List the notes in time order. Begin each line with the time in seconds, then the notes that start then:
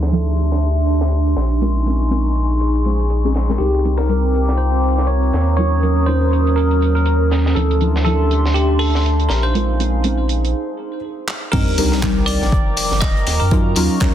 Already playing: D2 F3 C4 D4 E4 G4 A4 E5 A5 C6
0.03 snare
0.12 F3 C4 D4 E4 A4, closed hi-hat
0.38 closed hi-hat
0.52 snare
0.63 closed hi-hat
0.86 open hi-hat
1.01 snare
1.12 closed hi-hat
1.27 closed hi-hat
1.36 A#1 D#4 G#5 C6 C#6, snare, closed hi-hat
1.61 G#3 C4 C#4 F4 A#4, closed hi-hat
1.86 G#3 C4 C#4 F4 A#4, closed hi-hat
2.10 G#3 C4 C#4 F4 A#4, closed hi-hat
2.28 G#4
2.36 closed hi-hat
2.50 closed hi-hat
2.61 closed hi-hat
2.75 closed hi-hat
2.85 G#3 C4 C#4 F4 C5, closed hi-hat
2.99 closed hi-hat
3.10 closed hi-hat
3.24 G#3 C4 C#4 F4 G#4
3.34 snare, closed hi-hat
3.49 G#3 C4 C#4 F4 A#4, snare
3.58 C2 G3 C4 D4 D#4 G4 A#4 G5 A#5 D6, closed hi-hat
3.74 closed hi-hat
3.84 G3 C4 D4 D#4 A#4, closed hi-hat
3.98 A#4, snare
4.05 G3 F4
4.09 C4 D4 D#4 A#4, closed hi-hat
4.34 A#4, closed hi-hat
4.49 snare
4.58 C5, closed hi-hat
4.84 open hi-hat
4.98 snare
5.07 C#5, closed hi-hat
5.23 closed hi-hat
5.33 D#2 C#4 D#6, snare, closed hi-hat
5.54 F#3 C#5
5.58 C#4 D#4 F4 A#4, closed hi-hat
5.83 F#3 C#4 D#4 F4 A#4, closed hi-hat
6.06 F#3 C#4 D#4 F4 A#4 C5, closed hi-hat
6.33 closed hi-hat
6.47 closed hi-hat
6.56 A#4, closed hi-hat
6.71 closed hi-hat
6.82 closed hi-hat
6.95 A#4, closed hi-hat
7.06 closed hi-hat
7.31 snare, closed hi-hat
7.46 snare
7.55 D2 F3 C4 D4 E4 A4 E5 A5 C6, closed hi-hat
7.71 closed hi-hat
7.81 F3 C4 D4 E4 G4 A4, closed hi-hat
7.96 snare
8.05 F3 C4 D4 E4 A4, closed hi-hat
8.31 closed hi-hat
8.35 C6
8.46 snare
8.54 G4, closed hi-hat
8.79 A4, open hi-hat
8.95 snare
9.06 closed hi-hat
9.20 closed hi-hat
9.29 A#1 D#4 A#4 F5 G#5, snare, closed hi-hat
9.43 C5
9.55 G#3 C4 C#4 F4 A#4, closed hi-hat
9.79 G#3 C4 C#4 F4 A#4, closed hi-hat
10.04 G#3 C4 C#4 F4 A#4, closed hi-hat
10.21 G#4
10.29 closed hi-hat
10.45 closed hi-hat
11.28 clap
11.52 C2 F3 G3 C4 D4 D#4 A#4 G5 A#5 D6, kick, closed hi-hat, crash, sub drop
11.68 closed hi-hat
11.78 C2 G3 C4 D4 D#4 A#4, closed hi-hat, open hi-hat
11.92 snare
12.02 C2 G3 C4 D4 D#4 A#4, kick, snare, clap, closed hi-hat
12.26 D5, closed hi-hat, open hi-hat
12.32 A#4 D6
12.42 A#1, snare
12.52 kick, closed hi-hat
12.77 open hi-hat
12.91 G1, snare
13.01 D#5, kick, snare, clap
13.17 closed hi-hat
13.27 D#2 D#4 C#6, snare, closed hi-hat, open hi-hat
13.40 F#2 A#4
13.51 F#3 C#4 D#4 F4 A#4, kick, closed hi-hat
13.58 G#4
13.69 C#5
13.76 D#2 F#3 C#4 D#4 F4 A#4, closed hi-hat, open hi-hat
14.00 D#2 F#3 C#4 D#4 F4 A#4, kick, snare, clap, closed hi-hat